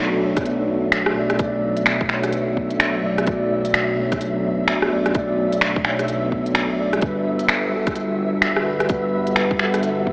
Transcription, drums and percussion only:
0.36 kick medium
0.36 cross-stick soft
0.36 closed hi-hat medium
0.45 closed hi-hat medium
0.92 finger snap loud
0.92 closed hi-hat medium
1.06 cross-stick medium
1.30 cross-stick soft
1.30 closed hi-hat soft
1.39 kick loud
1.39 closed hi-hat medium
1.77 closed hi-hat medium
1.86 finger snap loud
1.86 closed hi-hat medium
2.01 kick loud
2.09 finger snap medium
2.23 cross-stick soft
2.23 closed hi-hat medium
2.32 closed hi-hat medium
2.57 kick medium
2.70 closed hi-hat soft
2.80 finger snap loud
2.80 closed hi-hat medium
3.18 cross-stick medium
3.18 closed hi-hat soft
3.27 kick loud
3.27 closed hi-hat soft
3.65 closed hi-hat medium
3.74 finger snap loud
3.74 closed hi-hat medium
4.12 kick loud
4.12 cross-stick soft
4.12 closed hi-hat medium
4.21 closed hi-hat medium
4.68 finger snap loud
4.68 closed hi-hat medium
4.82 cross-stick medium
5.06 cross-stick soft
5.06 closed hi-hat soft
5.15 kick loud
5.15 closed hi-hat medium
5.52 closed hi-hat medium
5.61 finger snap loud
5.61 closed hi-hat medium
5.76 kick loud
5.85 finger snap medium
5.99 cross-stick soft
5.99 closed hi-hat medium
6.08 closed hi-hat medium
6.32 kick medium
6.46 closed hi-hat soft
6.55 finger snap loud
6.55 closed hi-hat medium
6.93 cross-stick soft
6.93 closed hi-hat soft
7.02 kick loud
7.02 closed hi-hat soft
7.39 closed hi-hat soft
7.48 finger snap loud
7.48 closed hi-hat soft
7.87 kick loud
7.87 cross-stick soft
7.87 closed hi-hat medium
7.95 closed hi-hat soft
8.42 finger snap loud
8.42 closed hi-hat soft
8.56 cross-stick medium
8.80 cross-stick soft
8.80 closed hi-hat soft
8.89 kick loud
8.89 closed hi-hat soft
9.27 closed hi-hat medium
9.36 finger snap loud
9.36 closed hi-hat medium
9.51 kick loud
9.59 finger snap medium
9.74 cross-stick soft
9.74 closed hi-hat medium
9.83 closed hi-hat soft
10.07 kick medium

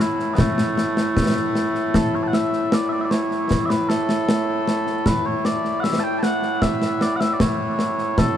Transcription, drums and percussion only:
0.00 snare medium
0.19 snare soft
0.38 concert bass drum medium
0.38 snare loud
0.58 snare medium
0.78 snare medium
0.97 snare medium
1.17 concert bass drum medium
1.17 snare loud
1.55 snare medium
1.75 snare soft
1.94 concert bass drum medium
1.94 snare loud
2.33 snare medium
2.53 snare soft
2.72 snare loud
3.11 snare medium
3.31 snare soft
3.51 concert bass drum medium
3.51 snare loud
3.70 snare medium
3.90 snare medium
4.09 snare medium
4.29 snare loud
4.68 snare medium
4.87 snare soft
5.06 concert bass drum medium
5.06 snare loud
5.45 snare medium
5.65 snare soft
5.84 snare loud
6.23 snare medium
6.42 snare soft
6.62 concert bass drum medium
6.62 snare loud
6.82 snare medium
7.01 snare medium
7.21 snare medium
7.40 concert bass drum medium
7.40 snare loud
7.79 snare medium
7.98 snare soft
8.18 concert bass drum medium
8.18 snare loud

